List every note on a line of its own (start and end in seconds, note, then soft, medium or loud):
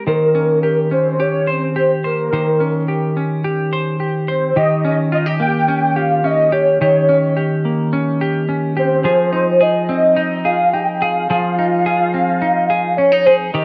0.00 0.34 C4 medium
0.00 0.38 G4 medium
0.07 2.32 D#3 medium
0.07 0.87 A#4 loud
0.07 1.46 C5 medium
0.35 0.91 C#4 medium
0.63 1.19 G4 medium
0.91 2.60 C#4 medium
0.91 1.22 C5 loud
1.20 1.76 G4 medium
1.20 1.51 C#5 loud
1.47 2.03 C5 medium
1.47 1.77 C5 loud
1.76 2.88 G4 medium
1.76 1.90 C5 medium
2.04 3.13 A#4 medium
2.04 2.32 C5 medium
2.33 4.56 D#3 medium
2.33 3.71 C5 medium
2.60 3.16 C#4 medium
2.88 3.44 G4 medium
3.17 4.84 C#4 medium
3.44 4.00 G4 medium
3.73 4.27 C5 medium
4.00 4.56 G4 soft
4.28 4.62 C5 medium
4.28 4.55 C5 medium
4.56 6.81 D#3 medium
4.56 5.12 G4 medium
4.56 4.83 D#5 loud
4.85 5.67 C#4 medium
4.85 4.98 D#5 medium
5.12 5.26 F4 medium
5.12 5.39 D#5 loud
5.26 5.95 G4 medium
5.40 7.64 A#3 medium
5.40 5.98 G5 loud
5.68 6.23 C#4 medium
5.96 6.51 G4 medium
5.96 6.24 F5 loud
6.24 7.08 C#4 medium
6.24 6.54 D#5 loud
6.52 6.80 G4 medium
6.52 6.80 C#5 medium
6.81 9.07 D#3 loud
6.81 7.36 G4 medium
6.81 7.33 C#5 loud
7.09 7.92 C#4 medium
7.37 8.20 G4 medium
7.65 9.04 A#3 medium
7.93 8.48 C#4 medium
8.21 8.76 G4 medium
8.49 9.11 C#4 medium
8.77 9.10 G4 medium
8.77 9.63 C5 loud
9.04 11.29 F3 medium
9.04 9.59 G#4 medium
9.33 10.16 D#4 medium
9.61 10.44 G#4 medium
9.61 9.89 D#5 loud
9.89 12.13 C4 medium
9.89 10.16 D#5 loud
10.16 10.73 D#4 medium
10.16 10.46 D#5 loud
10.45 11.01 G#4 medium
10.45 10.74 F5 loud
10.73 11.58 D#4 medium
10.73 11.03 G5 loud
11.02 11.30 G#4 medium
11.02 12.98 F5 loud
11.30 13.54 F3 medium
11.30 11.85 G#4 medium
11.59 12.41 D#4 medium
11.86 12.69 G#4 medium
12.14 13.59 C4 medium
12.42 12.98 D#4 medium
12.70 13.25 G#4 medium
12.97 13.12 C#4 medium
12.97 13.24 C#5 loud
13.12 13.59 D#4 medium
13.25 13.54 G#4 medium
13.25 13.38 C5 medium
13.53 13.65 D#3 loud
13.53 13.65 G4 medium
13.53 13.65 D#5 loud